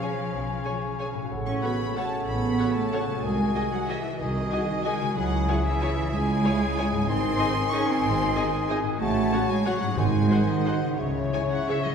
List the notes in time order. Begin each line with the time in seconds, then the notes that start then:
Already playing: B2 C#3 F3 C#4 G#4 C#5 F5 G#5
0.00 C#4 G#4 C#5 G#5
0.33 B1
0.64 C#4 G#4 C#5 G#5
0.99 C#4 G#4 C#5 G#5
1.14 A2
1.18 C#4
1.23 F#4
1.27 A1 A4 C#5
1.31 C#3 C#5 F#5
1.46 C#4 C#6
1.62 B3 C#4 F#4 A4 C#5 F#5 B5
1.96 C#3 A3 C#4 F#4 A4 C#5 F#5 A5
2.27 A1 B3 B5
2.59 C#4 F#4 A4 C#5 F#5
2.76 A3 A5
2.93 C#4 F#4 A4 C#5 F#5
3.07 C3
3.11 G#3
3.15 F#4
3.20 C2 G#3 D#5 G#5
3.24 D#3 F#4 G#4 G#5
3.55 F#4 G#4 D#5 G#5
3.72 F#3 F#5
3.87 E3 F#4 G#4 D#5 E5 G#5
4.18 C2 D#3 F#4 G#4 D#5 G#5
4.51 F#4 G#4 D#5 G#5
4.84 D#3 G#3 F#4 G#4 D#5 G#5
4.98 C#3
5.02 G#3
5.07 E4
5.12 C#5
5.16 C#2 C#3 F#3 E4 G#4 F#5 G#5
5.48 E4 G#4 C#5 G#5
5.64 E3 E5
5.80 E4 G#4 C#5 G#5
6.12 C#2 C#3 G#3 E4 G#4 G#5
6.44 E4 G#4 C#5 G#5
6.77 E4 G#4 C#5 G#5
6.91 G#2
6.96 G#3
7.00 D#4
7.05 C4 D#4 D#5
7.09 G#1 D#3 G#4 G#5 C6
7.39 D#4 G#4 D#5 G#5
7.70 C#4 D#4 G#4 D#5 G#5 C#6
7.88 C4 C6
8.04 G#1
8.35 D#4 G#4 D#5 G#5
8.68 D#4 G#4 D#5 G#5
8.83 A2
8.88 C#4 F#4
8.96 A3 C#5
9.01 A1 C#3 F#4 F#5 A5
9.32 C#4 F#4 C#5 F#5
9.49 G#3 G#5
9.65 C#3 F#3 C#4 F#4 C#5 F#5
9.81 G#2
9.85 D#4
9.90 F#4
9.94 G#1 G#2 G#3 G#4 C5
9.98 D#3 F#5 G#5
10.30 D#4 F#4 G#4 C5 F#5
10.46 D#3 D#5
10.65 D#4 F#4 G#4 C5 F#5
10.81 C#3
10.86 C#4
10.90 E4
10.95 C#3 G#4 C#5
10.99 C#2 C#3 C#5 E5
11.06 C#3
11.21 C#3
11.29 C#3 C#4 E4 C#5 G#5
11.33 G#4
11.38 C#3
11.46 C#3
11.50 C#3 F#5
11.68 C#3 C#4 E4 G#4 C#5 E5
11.78 C#3
11.85 C#3 D#5